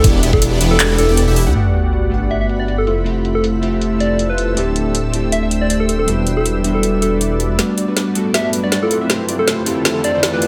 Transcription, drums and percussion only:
0.04 kick, closed hi-hat
0.23 closed hi-hat
0.33 kick
0.42 closed hi-hat
0.61 closed hi-hat
0.80 clap, closed hi-hat
0.98 closed hi-hat
1.17 closed hi-hat
1.36 open hi-hat
1.55 closed hi-hat
1.74 closed hi-hat
1.93 closed hi-hat
2.12 closed hi-hat
2.31 closed hi-hat
2.49 closed hi-hat
2.68 closed hi-hat
2.87 closed hi-hat
3.06 closed hi-hat
3.25 closed hi-hat
3.44 closed hi-hat
3.63 closed hi-hat
3.81 closed hi-hat
4.00 closed hi-hat
4.19 closed hi-hat
4.38 closed hi-hat
4.57 closed hi-hat
4.76 closed hi-hat
4.95 closed hi-hat
5.14 closed hi-hat
5.32 closed hi-hat
5.51 closed hi-hat
5.70 closed hi-hat
5.89 closed hi-hat
6.08 closed hi-hat
6.27 closed hi-hat
6.46 closed hi-hat
6.64 closed hi-hat
6.83 closed hi-hat
7.02 closed hi-hat
7.21 closed hi-hat
7.40 closed hi-hat
7.59 snare, closed hi-hat
7.78 closed hi-hat
7.97 snare, closed hi-hat
8.15 closed hi-hat
8.34 snare, closed hi-hat
8.53 closed hi-hat
8.72 snare, closed hi-hat
8.91 closed hi-hat
9.10 snare, closed hi-hat
9.29 closed hi-hat
9.48 snare, closed hi-hat
9.66 closed hi-hat
9.85 snare, closed hi-hat
10.04 closed hi-hat
10.23 snare, closed hi-hat
10.42 closed hi-hat

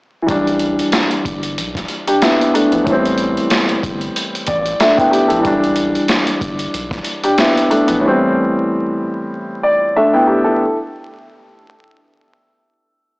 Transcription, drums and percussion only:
0.29 kick, closed hi-hat
0.47 closed hi-hat
0.59 closed hi-hat
0.79 closed hi-hat
0.92 snare, closed hi-hat
1.11 closed hi-hat
1.25 kick, closed hi-hat
1.43 closed hi-hat
1.58 closed hi-hat
1.75 kick, snare, closed hi-hat
1.88 closed hi-hat
2.07 closed hi-hat
2.22 snare, closed hi-hat
2.41 closed hi-hat
2.55 closed hi-hat
2.72 closed hi-hat
2.87 kick, closed hi-hat
3.05 closed hi-hat
3.18 closed hi-hat
3.37 closed hi-hat
3.50 snare, closed hi-hat
3.69 closed hi-hat
3.83 kick, closed hi-hat
4.01 closed hi-hat
4.16 closed hi-hat
4.35 closed hi-hat
4.47 kick, closed hi-hat
4.66 closed hi-hat
4.80 snare, closed hi-hat
4.98 kick, closed hi-hat
5.13 closed hi-hat
5.30 closed hi-hat
5.45 kick, closed hi-hat
5.64 closed hi-hat
5.76 closed hi-hat
5.95 closed hi-hat
6.08 snare, closed hi-hat
6.27 closed hi-hat
6.41 kick, closed hi-hat
6.59 closed hi-hat
6.74 closed hi-hat
6.91 kick, snare, closed hi-hat
7.04 closed hi-hat
7.24 closed hi-hat
7.38 snare, closed hi-hat
7.57 closed hi-hat
7.71 closed hi-hat
7.88 closed hi-hat

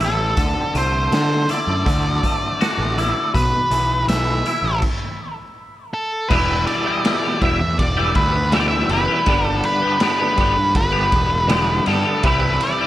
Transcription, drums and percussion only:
0.00 closed hi-hat
0.37 kick, closed hi-hat
0.75 closed hi-hat
1.12 snare, closed hi-hat
1.49 closed hi-hat
1.86 kick, closed hi-hat
2.23 kick, closed hi-hat
2.61 snare, closed hi-hat
2.98 closed hi-hat
3.35 kick, closed hi-hat
3.71 closed hi-hat
4.09 snare, closed hi-hat
4.46 closed hi-hat
4.82 kick, crash
6.31 kick, crash
6.67 ride
7.05 snare, ride
7.42 kick, ride
7.79 kick, ride
8.15 kick, ride
8.52 snare, ride
8.89 ride
9.26 kick, ride
9.63 ride
10.00 snare, ride
10.37 kick, ride
10.75 kick, ride
11.12 kick, ride
11.49 snare, ride
11.86 ride
12.23 kick, ride
12.61 ride

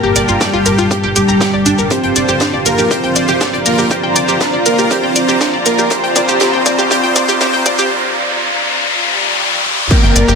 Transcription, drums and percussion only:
0.16 closed hi-hat, shaker
0.28 shaker
0.41 kick, snare, closed hi-hat, shaker
0.65 closed hi-hat, shaker
0.78 shaker
0.91 kick, closed hi-hat, shaker
1.16 closed hi-hat, shaker
1.28 shaker
1.40 kick, snare, closed hi-hat, shaker
1.66 closed hi-hat, shaker
1.78 shaker
1.90 kick, closed hi-hat, shaker
2.03 closed hi-hat
2.16 closed hi-hat, shaker
2.28 shaker
2.40 kick, snare, closed hi-hat, shaker
2.65 closed hi-hat, shaker
2.78 shaker
2.91 kick, closed hi-hat, shaker
3.04 closed hi-hat
3.15 closed hi-hat, shaker
3.28 closed hi-hat, shaker
3.41 kick, snare, closed hi-hat, shaker
3.54 closed hi-hat
3.66 closed hi-hat, open hi-hat, shaker
3.78 shaker
3.91 kick, closed hi-hat, shaker
4.16 closed hi-hat, shaker
4.28 shaker
4.41 kick, snare, closed hi-hat, shaker
4.66 closed hi-hat, shaker
4.78 shaker
4.91 kick, closed hi-hat, shaker
5.16 closed hi-hat, shaker
5.28 shaker
5.41 kick, snare, closed hi-hat, shaker
5.66 closed hi-hat, shaker
5.78 shaker
5.90 kick, closed hi-hat, shaker
6.04 closed hi-hat
6.16 kick, closed hi-hat, shaker
6.28 shaker
6.40 kick, snare, closed hi-hat, shaker
6.66 kick, closed hi-hat, shaker
6.78 shaker
6.91 kick, closed hi-hat, shaker
7.04 closed hi-hat
7.16 kick, closed hi-hat, shaker
7.28 closed hi-hat, shaker
7.41 kick, snare, closed hi-hat, shaker
7.54 closed hi-hat
7.65 kick, closed hi-hat, open hi-hat, shaker
7.78 shaker
9.53 high tom
9.66 mid tom
9.78 mid tom
9.91 kick, closed hi-hat, crash, shaker
10.03 closed hi-hat
10.16 closed hi-hat, shaker
10.28 shaker

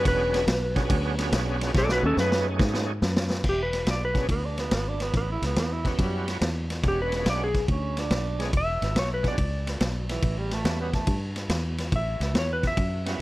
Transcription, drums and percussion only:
0.05 kick, snare, ride
0.34 snare, ride
0.47 snare, ride
0.76 kick, snare, ride
0.90 kick, ride
1.18 snare, ride
1.32 snare, ride
1.61 snare, ride
1.75 kick, snare
1.89 snare
2.17 snare
2.32 snare
2.59 kick, snare
2.74 snare
3.02 snare
3.17 snare
3.30 snare
3.44 kick, snare, crash
3.73 snare, ride
3.87 snare, ride
4.15 kick, snare, ride
4.29 kick, ride
4.58 snare, ride
4.71 snare, ride
5.00 snare, ride
5.14 kick, snare, ride
5.42 snare, ride
5.56 snare, ride
5.85 kick, snare, ride
5.99 kick, snare, ride
6.28 snare, ride
6.41 snare, ride
6.70 snare, ride
6.83 kick, snare, ride
7.12 snare, ride
7.26 snare, ride
7.54 kick, snare, ride
7.68 kick, ride
7.97 snare, ride
8.11 snare, ride
8.40 snare, ride
8.53 kick, ride
8.82 snare, ride
8.96 snare, ride
9.24 kick, snare, ride
9.38 kick, ride
9.67 snare, ride
9.80 snare, ride
10.09 snare, ride
10.22 kick, ride
10.51 snare, ride
10.65 snare, ride
10.93 kick, snare, ride
11.07 kick, ride
11.36 snare, ride
11.49 snare, ride
11.78 snare, ride
11.92 kick, ride
12.21 snare, ride
12.35 snare, ride
12.63 kick, snare, ride
12.77 kick, ride
13.06 snare, ride

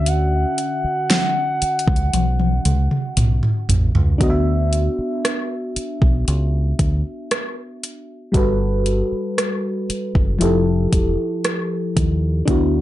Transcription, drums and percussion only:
0.06 closed hi-hat
0.58 closed hi-hat
1.10 snare, closed hi-hat
1.62 closed hi-hat
1.79 closed hi-hat
1.88 kick
1.96 closed hi-hat
2.13 closed hi-hat, high tom
2.40 high tom
2.65 closed hi-hat, mid tom
2.91 mid tom
3.17 closed hi-hat, mid tom
3.43 mid tom
3.69 closed hi-hat, floor tom
3.95 floor tom
4.21 kick, closed hi-hat
4.73 closed hi-hat
5.25 cross-stick, closed hi-hat
5.76 closed hi-hat
6.02 kick
6.28 closed hi-hat
6.79 kick, closed hi-hat
7.31 cross-stick, closed hi-hat
7.84 closed hi-hat
8.34 kick, closed hi-hat
8.86 closed hi-hat
9.38 cross-stick, closed hi-hat
9.90 closed hi-hat
10.15 kick
10.41 closed hi-hat
10.93 kick, closed hi-hat
11.44 cross-stick, closed hi-hat
11.97 kick, closed hi-hat
12.48 kick, closed hi-hat

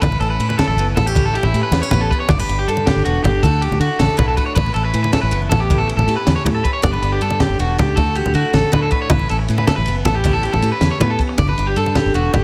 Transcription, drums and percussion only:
0.02 kick, ride, muted conga, high conga, low conga
0.12 low conga
0.21 ride
0.40 ride
0.50 muted conga
0.59 snare, ride, high conga, low conga
0.79 ride
0.88 low conga
0.97 snare, ride, muted conga, low conga
1.15 kick, ride, high conga, low conga
1.35 ride
1.43 muted conga, low conga
1.54 ride
1.72 snare, ride, high conga
1.82 low conga
1.91 ride, muted conga, low conga
2.11 kick, ride
2.29 kick, ride, muted conga, high conga, low conga
2.39 low conga
2.49 ride
2.69 ride
2.77 muted conga
2.87 snare, ride, high conga, low conga
3.06 ride
3.16 low conga
3.24 ride, muted conga, low conga
3.43 kick, ride, high conga, low conga
3.62 ride
3.72 muted conga, low conga
3.81 ride
4.00 snare, ride, high conga
4.10 low conga
4.19 ride, muted conga, low conga
4.37 kick, ride
4.56 kick, ride, muted conga, high conga, low conga
4.66 low conga
4.76 ride
4.94 ride
5.04 muted conga
5.13 snare, ride, high conga, low conga
5.32 ride
5.42 low conga
5.52 snare, ride, muted conga, low conga
5.70 kick, ride, high conga, low conga
5.89 ride
5.99 muted conga, low conga
6.09 ride
6.27 snare, ride, high conga
6.37 low conga
6.46 ride, muted conga, low conga
6.65 kick, ride
6.83 kick, ride, muted conga, high conga
6.93 low conga
7.03 ride
7.21 ride
7.30 muted conga, low conga
7.40 snare, ride, high conga, low conga
7.50 low conga
7.60 ride, low conga
7.78 snare, ride, muted conga, low conga
7.97 kick, ride, high conga, low conga
8.07 low conga
8.15 ride, low conga
8.26 muted conga, low conga
8.35 ride
8.45 low conga
8.54 snare, ride, high conga
8.73 ride, muted conga, low conga
8.92 kick, ride
9.10 kick, ride, muted conga, high conga, low conga
9.19 low conga
9.29 ride
9.48 ride
9.58 muted conga
9.67 snare, ride, high conga, low conga
9.86 ride
9.96 low conga
10.05 snare, ride, muted conga, low conga
10.24 kick, ride, high conga, low conga
10.43 ride
10.53 muted conga, low conga
10.62 ride
10.81 snare, ride, high conga
10.92 low conga
11.01 ride, muted conga, low conga
11.19 kick, ride
11.38 kick, ride, muted conga, high conga, low conga
11.48 low conga
11.58 ride
11.76 ride
11.86 muted conga
11.95 snare, ride, high conga, low conga
12.15 ride
12.25 low conga
12.34 ride, muted conga, low conga

